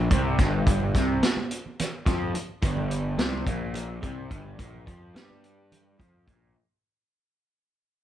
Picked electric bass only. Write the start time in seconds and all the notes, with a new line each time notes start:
0.11 C2
0.39 G1
0.95 C2
2.06 F2
2.34 muted picked electric bass stroke
2.62 G1
3.18 C2
3.46 A#1
4.03 C2
4.31 G1
4.59 A#1
4.87 F2
5.15 G2
5.99 F2
6.27 A#1